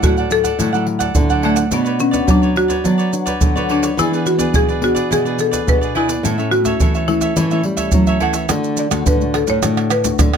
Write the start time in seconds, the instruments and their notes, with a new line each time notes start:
Already playing: nylon-string guitar F#3 A3 E4
0.03 nylon-string guitar A2, cavaquinho E4 A4 D5 F#5, marimba F#4, pandeiro, maracas, surdo
0.17 cavaquinho A4 D5 F#5, pandeiro, maracas
0.30 nylon-string guitar F#3 A3 E4, marimba A4, pandeiro, maracas
0.44 cavaquinho A4 D5 F#5, pandeiro, maracas, surdo
0.59 nylon-string guitar A2 D3 F#3 A3 E4, cavaquinho E4 A4 D5 F#5, pandeiro, maracas, surdo
0.73 nylon-string guitar F#3 A3 E4, cavaquinho A4 D5 F#5, pandeiro, maracas
0.86 muted cavaquinho stroke, pandeiro
0.99 cavaquinho A4 D5 F#5, pandeiro, maracas, surdo
1.15 nylon-string guitar A2 D3 F#3 A3 E4, pandeiro, maracas, surdo
1.30 cavaquinho A4 D5 F#5, pandeiro, maracas, surdo
1.42 marimba A3, cavaquinho E4 A4 D5 F#5, pandeiro
1.56 cavaquinho A4 D5 F#5, pandeiro, maracas
1.71 nylon-string guitar B2 B3 D4 F#4 C#5, marimba B3, cavaquinho D4 B4 C#5 D5, pandeiro, maracas, surdo
1.84 cavaquinho B4 C#5 D5, pandeiro, maracas
1.99 marimba C#4, muted cavaquinho stroke, pandeiro, maracas
2.11 nylon-string guitar D4 F#4 C#5, cavaquinho B4 C#5 D5, pandeiro, maracas, surdo
2.27 nylon-string guitar F#3, cavaquinho D4 B4 C#5 D5, marimba D4, pandeiro, maracas, surdo
2.42 cavaquinho B4 C#5 D5, pandeiro, maracas
2.56 nylon-string guitar D4 F#4 C#5, marimba F#4, pandeiro
2.68 cavaquinho B4 C#5 D5, pandeiro, maracas, surdo
2.84 nylon-string guitar F#3 B3 D4 F#4 C#5, cavaquinho D4 B4 C#5 D5, pandeiro, maracas, surdo
2.98 cavaquinho B4 C#5 D5, pandeiro, maracas
3.12 nylon-string guitar D4 F#4 C#5, muted cavaquinho stroke, pandeiro, maracas
3.26 cavaquinho B4 C#5 D5, pandeiro, maracas, surdo
3.41 nylon-string guitar D3 F#3, pandeiro, maracas, surdo
3.55 nylon-string guitar D4 F#4 C#5, cavaquinho B4 C#5 D5, pandeiro, maracas, surdo
3.69 cavaquinho D4 B4 C#5 D5, marimba D4, pandeiro
3.83 cavaquinho B4 C#5 D5, pandeiro, maracas
3.97 nylon-string guitar E3 B3 D4 G#4, cavaquinho E4 G#4 B4 D5, marimba E4, pandeiro, maracas, surdo
4.12 nylon-string guitar B3 D4 G#4, cavaquinho B4 D5, pandeiro, maracas
4.16 cavaquinho G#4
4.26 marimba F#4, muted cavaquinho stroke, pandeiro, maracas
4.37 nylon-string guitar B3 D4 G#4, cavaquinho G#4 B4 D5, pandeiro, maracas, surdo
4.54 nylon-string guitar B2, cavaquinho E4 G#4 B4 D5, marimba G#4, pandeiro, maracas, surdo
4.68 cavaquinho G#4 B4 D5, pandeiro, maracas
4.81 nylon-string guitar B3 D4 G#4, marimba F#4, pandeiro
4.95 cavaquinho G#4 B4 D5, pandeiro, maracas, surdo
5.10 nylon-string guitar B2 E3, cavaquinho E4 G#4 B4 D5, marimba G#4, pandeiro, maracas, surdo
5.25 nylon-string guitar B3 D4 G#4, cavaquinho G#4 B4 D5, pandeiro, maracas
5.39 marimba A4, muted cavaquinho stroke, pandeiro, maracas
5.51 cavaquinho G#4 B4 D5, pandeiro, maracas, surdo
5.67 nylon-string guitar B2 B3 D4 G#4, marimba B4, pandeiro, maracas, surdo
5.81 cavaquinho G#4 B4 D5, pandeiro, maracas, surdo
5.95 cavaquinho E4 G#4 B4 D5, marimba E4, pandeiro, surdo
6.09 cavaquinho G#4 B4 D5, pandeiro, maracas
6.23 nylon-string guitar A2 A3 C#4 E4, cavaquinho E4 A4 C#5 E5, pandeiro, maracas, surdo
6.38 nylon-string guitar A3 C#4 E4, cavaquinho A4 C#5 E5, pandeiro, maracas
6.51 marimba F#4, muted cavaquinho stroke, pandeiro
6.65 nylon-string guitar A3 C#4 E4, cavaquinho A4 C#5 E5, pandeiro, maracas, surdo
6.80 nylon-string guitar E3, cavaquinho E4 A4 C#5 E5, pandeiro, maracas, surdo
6.95 cavaquinho A4 C#5 E5, pandeiro, maracas
7.08 nylon-string guitar A3 C#4 E4, marimba E4, pandeiro
7.21 cavaquinho A4 C#5 E5, pandeiro, maracas, surdo
7.36 nylon-string guitar A2 E3 A3 C#4 E4, cavaquinho E4 A4 C#5 E5, pandeiro, maracas, surdo
7.51 nylon-string guitar A3 C#4 E4, cavaquinho A4 C#5 E5, pandeiro, maracas
7.63 nylon-string guitar G3, muted cavaquinho stroke, pandeiro
7.77 cavaquinho A4 C#5 E5, pandeiro, maracas, surdo
7.92 nylon-string guitar E3 F#3 A3 C#4 E4, pandeiro, maracas, surdo
8.07 cavaquinho A4 C#5 E5, pandeiro, maracas, surdo
8.20 nylon-string guitar E3, cavaquinho E4 A4 C#5 E5, marimba F#5, pandeiro, surdo
8.34 cavaquinho A4 C#5 E5, pandeiro, maracas
8.49 nylon-string guitar D3 A3 D4 F#4, pandeiro, tamborim, maracas, surdo
8.64 pandeiro, maracas
8.77 marimba D5, pandeiro, maracas
8.91 nylon-string guitar D3 A3 D4 F#4, pandeiro, tamborim, maracas, surdo
9.06 nylon-string guitar A2 D3, marimba B4, pandeiro, maracas, surdo
9.21 nylon-string guitar A3 D4 F#4, pandeiro, maracas
9.34 marimba A4, pandeiro, tamborim
9.47 nylon-string guitar A2, marimba C#5, pandeiro, maracas, surdo
9.62 nylon-string guitar A2 D3 A3 D4 F#4, pandeiro, tamborim, maracas, surdo
9.77 pandeiro, tamborim, maracas
9.90 marimba B4, pandeiro, tamborim, maracas
10.04 nylon-string guitar A3 D4 F#4, pandeiro, maracas, surdo
10.19 nylon-string guitar A2 D3, pandeiro, tamborim, maracas, surdo
10.34 nylon-string guitar A3, pandeiro, tamborim, maracas, surdo